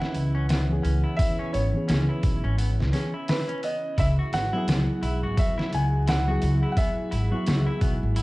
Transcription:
0.00 0.64 E3 medium
0.00 0.65 B3 medium
0.00 0.65 C#4 medium
0.00 3.93 C#4 medium
0.00 0.32 E4 medium
0.00 3.94 E4 medium
0.00 0.66 G#4 loud
0.00 3.93 B4 medium
0.00 1.22 F#5 loud
0.00 snare medium
0.14 0.82 C#2 medium
0.14 open hi-hat medium
0.35 0.47 C#4 loud
0.49 0.61 B3 medium
0.49 snare loud
0.49 open hi-hat medium
0.69 1.69 E3 medium
0.69 1.70 B3 medium
0.69 1.70 C#4 medium
0.69 1.71 G#4 medium
0.83 1.02 C#2 medium
0.83 1.02 C#4 medium
0.83 open hi-hat medium
1.04 1.37 E4 medium
1.17 1.54 E5 loud
1.17 kick loud
1.17 open hi-hat medium
1.39 1.52 C#4 loud
1.53 1.72 G#1 medium
1.53 1.65 B3 medium
1.53 2.89 C#5 medium
1.53 open hi-hat medium
1.73 2.89 E3 medium
1.73 2.90 B3 medium
1.73 2.91 C#4 medium
1.73 2.91 G#4 medium
1.88 2.07 C#2 medium
1.88 2.07 C#4 medium
1.88 snare loud
1.88 open hi-hat medium
2.09 2.42 E4 medium
2.23 2.42 B1 medium
2.23 kick medium
2.23 open hi-hat medium
2.44 2.81 G#1 medium
2.44 2.57 C#4 loud
2.58 2.70 B3 medium
2.58 open hi-hat medium
2.79 2.91 C#2 medium
2.79 snare soft
2.92 3.12 E3 medium
2.92 3.13 B3 medium
2.92 3.12 C#4 medium
2.92 3.13 C#4 medium
2.92 3.14 G#4 medium
2.92 snare soft
2.92 open hi-hat medium
3.14 3.47 E4 medium
3.28 3.61 B4 medium
3.28 snare loud
3.28 open hi-hat medium
3.48 3.61 C#4 loud
3.48 closed hi-hat soft
3.63 3.75 B3 medium
3.63 3.99 D#5 medium
3.63 open hi-hat medium
3.97 4.16 C#2 loud
3.97 8.22 E4 medium
3.97 4.16 E4 medium
3.97 8.22 G#4 medium
3.97 4.07 E5 loud
3.97 8.22 F#5 medium
3.97 kick loud
3.97 open hi-hat medium
4.19 4.51 F#4 medium
4.32 4.51 G#1 medium
4.32 5.41 F#5 loud
4.32 snare medium
4.32 open hi-hat medium
4.53 6.23 F#3 loud
4.53 6.23 B3 medium
4.53 4.66 E4 loud
4.53 6.24 E4 medium
4.57 6.25 G#4 loud
4.67 4.86 C#2 medium
4.67 4.79 B3 medium
4.67 snare loud
4.67 open hi-hat medium
5.02 5.21 B1 medium
5.02 5.21 E4 medium
5.02 open hi-hat medium
5.23 5.36 G#1 medium
5.23 5.56 F#4 medium
5.37 5.71 E5 loud
5.37 kick loud
5.37 open hi-hat medium
5.58 5.71 E4 medium
5.58 snare soft
5.73 6.39 C#2 medium
5.73 5.84 B3 medium
5.73 6.09 G#5 loud
5.73 open hi-hat medium
6.07 6.26 E4 medium
6.07 6.68 F#5 loud
6.07 snare loud
6.07 open hi-hat medium
6.27 7.27 F#3 medium
6.27 7.28 B3 medium
6.27 7.28 E4 medium
6.27 6.61 F#4 medium
6.27 7.29 G#4 medium
6.42 6.61 C#2 loud
6.42 open hi-hat medium
6.63 6.75 E4 medium
6.72 6.77 F#5 medium
6.77 6.89 B3 medium
6.77 8.22 E5 loud
6.77 kick loud
6.77 open hi-hat medium
7.11 7.30 G#1 loud
7.11 7.30 E4 medium
7.11 open hi-hat medium
7.31 8.22 F#3 medium
7.31 8.22 B3 medium
7.31 8.22 E4 medium
7.31 7.65 F#4 medium
7.35 8.22 G#4 medium
7.46 7.65 C#2 medium
7.46 snare loud
7.46 open hi-hat medium
7.66 7.80 E4 loud
7.81 8.00 B1 medium
7.81 7.93 B3 medium
7.81 kick medium
7.81 open hi-hat medium
8.03 8.22 G#1 medium
8.16 8.22 E4 medium
8.16 open hi-hat medium

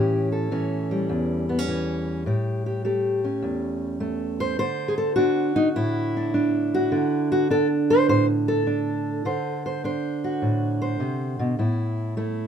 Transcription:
0.00 1.09 A2 medium
0.00 0.51 E3 medium
0.00 0.52 C#4 medium
0.00 0.32 G4 medium
0.32 2.30 A4 medium
0.51 1.67 E3 medium
0.51 1.49 C#4 medium
0.91 3.24 G3 medium
1.09 2.26 E2 medium
1.49 1.59 B3 medium
1.59 2.26 C#4 soft
1.68 2.24 E3 medium
2.26 3.43 A2 medium
2.26 2.65 G4 soft
2.66 2.84 G4 soft
2.85 4.00 A3 medium
2.85 4.57 G4 soft
3.24 4.57 C#4 soft
3.42 4.59 E2 medium
4.00 4.58 A3 medium
4.40 4.58 C5 loud
4.59 6.91 D3 medium
4.59 5.47 C5 loud
4.88 4.97 G#4 medium
4.98 5.15 A4 medium
5.16 5.55 D4 medium
5.16 6.14 F#4 loud
5.56 5.67 D#4 medium
5.76 6.93 A2 medium
5.76 7.32 E4 medium
6.17 6.33 D4 soft
6.34 7.50 D4 medium
6.74 7.31 F#4 medium
6.92 9.24 D3 medium
7.32 7.51 F#4 medium
7.50 8.66 D4 medium
7.50 7.67 A4 loud
7.90 8.08 C5 medium
8.08 9.25 A2 medium
8.08 8.25 C5 loud
8.48 9.84 A4 medium
8.67 9.23 D4 medium
9.25 11.58 D3 medium
9.25 9.65 C5 medium
9.66 9.84 C5 medium
9.84 11.56 D4 medium
9.84 10.80 C5 medium
10.24 11.57 F#4 medium
10.42 11.00 A2 medium
10.82 11.56 C5 medium
11.00 11.39 C3 medium
11.39 11.58 B2 medium
11.59 12.47 A2 medium
11.59 12.17 E4 soft
12.17 12.47 A3 medium
12.17 12.47 E4 soft

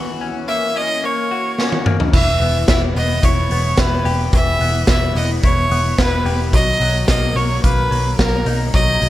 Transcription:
0.00 2.13 E3 medium
0.00 1.30 F#4 medium
0.21 0.75 C#4 medium
0.48 1.02 A#3 medium
0.48 0.78 E5 loud
0.76 1.58 C#4 medium
0.76 1.07 D#5 loud
1.04 1.85 A#3 medium
1.04 1.87 C#5 medium
1.31 2.19 F#4 medium
1.58 2.19 C#4 medium
1.58 snare medium
1.72 high tom medium
1.86 2.19 A#3 medium
1.86 mid tom medium
2.00 floor tom medium
2.13 2.36 E1 medium
2.13 4.32 E3 medium
2.13 2.66 E5 loud
2.13 kick loud
2.13 crash loud
2.40 2.63 E1 medium
2.40 2.96 B3 medium
2.40 open hi-hat medium
2.68 2.91 E1 loud
2.68 3.23 E4 medium
2.68 2.81 E5 medium
2.68 kick loud
2.68 snare loud
2.68 closed hi-hat medium
2.96 3.18 E1 loud
2.96 3.51 B3 medium
2.96 3.26 D#5 medium
2.96 open hi-hat medium
3.23 3.46 E1 loud
3.23 3.78 E4 medium
3.23 3.81 C#5 medium
3.23 kick medium
3.23 closed hi-hat medium
3.50 3.73 E1 loud
3.50 4.61 B3 medium
3.50 open hi-hat medium
3.77 4.01 E1 medium
3.77 4.88 E4 medium
3.77 4.20 B4 medium
3.77 kick medium
3.77 snare loud
3.77 closed hi-hat medium
4.05 4.28 E1 medium
4.05 6.24 G4 medium
4.05 open hi-hat medium
4.33 4.56 E1 medium
4.33 6.53 E3 medium
4.33 4.85 E5 loud
4.33 kick loud
4.33 closed hi-hat medium
4.60 4.83 E1 medium
4.60 5.15 B3 medium
4.60 open hi-hat medium
4.87 5.11 E1 loud
4.87 5.43 E4 medium
4.87 5.14 E5 medium
4.87 kick loud
4.87 snare loud
4.87 closed hi-hat medium
5.15 5.38 E1 medium
5.15 5.71 B3 medium
5.15 5.29 D#5 medium
5.15 open hi-hat medium
5.43 5.66 E1 loud
5.43 5.97 E4 medium
5.43 5.95 C#5 loud
5.43 kick loud
5.43 closed hi-hat medium
5.70 5.93 E1 loud
5.70 7.09 B3 medium
5.70 open hi-hat medium
5.98 6.21 E1 loud
5.98 6.59 E4 medium
5.98 6.38 B4 loud
5.98 kick medium
5.98 snare loud
5.98 closed hi-hat medium
6.25 6.53 E1 medium
6.25 6.59 G4 medium
6.25 open hi-hat medium
6.53 6.76 B1 loud
6.53 6.81 F#3 medium
6.53 7.05 D#5 loud
6.53 kick loud
6.53 closed hi-hat medium
6.80 7.03 B1 medium
6.80 7.36 F#3 medium
6.80 open hi-hat medium
7.08 7.31 B1 loud
7.08 7.63 A#3 medium
7.08 7.38 D#5 loud
7.08 kick loud
7.08 snare loud
7.08 closed hi-hat medium
7.35 7.58 B1 loud
7.35 7.90 F#3 medium
7.35 7.63 C#5 medium
7.35 open hi-hat medium
7.64 7.86 B1 loud
7.64 8.18 A#3 medium
7.64 8.15 B4 medium
7.64 kick loud
7.64 closed hi-hat medium
7.91 8.14 B1 loud
7.91 8.74 F#3 medium
7.91 open hi-hat medium
8.18 8.41 B1 loud
8.18 9.09 A#3 medium
8.18 8.57 A#4 loud
8.18 kick medium
8.18 snare loud
8.18 closed hi-hat medium
8.46 8.68 B1 medium
8.46 9.09 D#4 medium
8.46 open hi-hat medium
8.74 8.96 B1 loud
8.74 9.01 F#3 medium
8.74 9.09 D#5 loud
8.74 kick loud
8.74 closed hi-hat medium
9.02 9.09 B1 loud
9.02 9.09 F#3 medium
9.02 open hi-hat medium

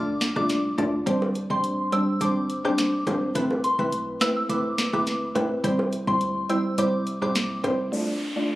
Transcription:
0.00 0.31 D2 loud
0.00 0.14 A3 loud
0.00 0.14 D4 medium
0.00 0.14 F4 medium
0.00 0.14 D5 loud
0.21 snare loud
0.21 closed hi-hat medium
0.36 0.74 C2 loud
0.36 0.75 A3 medium
0.36 0.75 D4 medium
0.36 0.75 F4 medium
0.36 0.75 D5 medium
0.36 0.48 D6 medium
0.36 kick medium
0.36 cross-stick medium
0.49 snare medium
0.49 closed hi-hat medium
0.78 1.04 D2 loud
0.78 1.04 A3 medium
0.78 1.05 D4 medium
0.78 1.05 F4 medium
0.78 1.05 D5 medium
0.78 closed hi-hat soft
0.78 high bongo medium
0.78 low bongo medium
1.06 1.46 G1 loud
1.06 1.28 G3 loud
1.06 1.28 C4 medium
1.06 1.29 D4 medium
1.06 1.29 C5 loud
1.06 kick loud
1.06 closed hi-hat medium
1.22 high bongo medium
1.35 closed hi-hat medium
1.50 1.88 A1 medium
1.50 1.71 G3 medium
1.50 1.71 C4 medium
1.50 1.71 D4 medium
1.50 1.72 C5 medium
1.50 1.63 C6 medium
1.50 kick medium
1.64 closed hi-hat medium
1.92 2.14 G3 medium
1.92 2.14 C4 medium
1.92 2.14 D4 medium
1.92 2.15 C5 medium
1.92 2.06 E6 medium
1.92 closed hi-hat medium
2.21 2.60 G1 loud
2.21 2.43 G3 medium
2.21 2.43 C4 medium
2.21 2.43 D4 medium
2.21 2.43 C5 loud
2.21 2.35 D6 medium
2.21 kick loud
2.21 closed hi-hat medium
2.50 closed hi-hat medium
2.65 3.02 F1 medium
2.65 3.04 G3 medium
2.65 3.04 C4 medium
2.65 3.04 D4 medium
2.65 3.04 C5 medium
2.65 2.77 D6 medium
2.65 cross-stick medium
2.78 snare loud
2.78 closed hi-hat medium
3.07 3.32 G1 medium
3.07 3.33 G3 medium
3.07 3.33 C4 medium
3.07 3.33 D4 medium
3.07 3.33 C5 medium
3.07 kick medium
3.07 closed hi-hat soft
3.07 high bongo medium
3.07 low bongo medium
3.35 3.75 A1 loud
3.35 3.57 A3 loud
3.35 3.57 C4 medium
3.35 3.57 E4 medium
3.35 3.57 B4 loud
3.35 kick loud
3.35 closed hi-hat medium
3.51 high bongo medium
3.64 3.78 C6 medium
3.64 closed hi-hat medium
3.79 4.17 B1 medium
3.79 4.00 A3 medium
3.79 4.00 C4 medium
3.79 4.00 E4 medium
3.79 4.00 B4 medium
3.79 kick medium
3.92 closed hi-hat medium
4.21 4.43 A3 medium
4.21 4.43 C4 medium
4.21 4.43 E4 medium
4.21 4.43 B4 medium
4.21 4.35 E6 medium
4.21 snare loud
4.21 closed hi-hat soft
4.36 4.48 E6 medium
4.49 4.89 A1 loud
4.49 4.71 A3 loud
4.49 4.72 C4 medium
4.49 4.72 E4 medium
4.49 4.72 B4 loud
4.49 4.63 D6 medium
4.49 kick medium
4.49 closed hi-hat medium
4.78 snare loud
4.78 closed hi-hat medium
4.93 5.31 G1 medium
4.93 5.32 A3 medium
4.93 5.32 C4 medium
4.93 5.32 E4 medium
4.93 5.32 B4 medium
4.93 5.05 D6 medium
4.93 kick medium
4.93 cross-stick medium
5.07 snare medium
5.07 closed hi-hat medium
5.35 5.61 A1 loud
5.35 5.62 A3 medium
5.35 5.62 C4 medium
5.35 5.62 E4 medium
5.35 5.62 B4 medium
5.35 closed hi-hat soft
5.35 high bongo medium
5.35 low bongo medium
5.64 6.03 C2 loud
5.64 5.86 G3 loud
5.64 5.86 C4 medium
5.64 5.86 E4 medium
5.64 5.86 C5 loud
5.64 kick loud
5.64 closed hi-hat medium
5.79 high bongo medium
5.93 closed hi-hat medium
6.07 6.45 D2 medium
6.07 6.29 G3 medium
6.07 6.29 C4 medium
6.07 6.29 E4 medium
6.07 6.29 C5 medium
6.07 6.20 C6 medium
6.07 kick medium
6.21 closed hi-hat medium
6.49 6.71 G3 medium
6.49 6.71 C4 medium
6.49 6.72 E4 medium
6.49 6.72 C5 medium
6.49 6.63 E6 medium
6.49 closed hi-hat soft
6.78 7.17 C2 loud
6.78 7.00 G3 loud
6.78 7.00 C4 medium
6.78 7.00 E4 medium
6.78 7.00 C5 loud
6.78 6.92 D6 medium
6.78 closed hi-hat medium
7.07 closed hi-hat medium
7.22 7.59 B1 medium
7.22 7.61 G3 medium
7.22 7.61 C4 medium
7.22 7.61 E4 medium
7.22 7.61 C5 medium
7.22 7.34 D6 medium
7.22 cross-stick medium
7.35 snare loud
7.35 closed hi-hat medium
7.64 7.90 C2 loud
7.64 7.90 G3 medium
7.64 7.90 C4 medium
7.64 7.90 E4 medium
7.64 7.91 C5 medium
7.64 closed hi-hat soft
7.64 high bongo medium
7.64 low bongo medium
7.92 8.14 A3 medium
7.92 8.14 D4 medium
7.92 8.14 F4 medium
7.92 8.14 D5 loud
7.92 downlifter medium
8.36 8.55 A3 medium
8.36 8.55 D4 medium
8.36 8.55 F4 medium
8.36 8.55 D5 medium

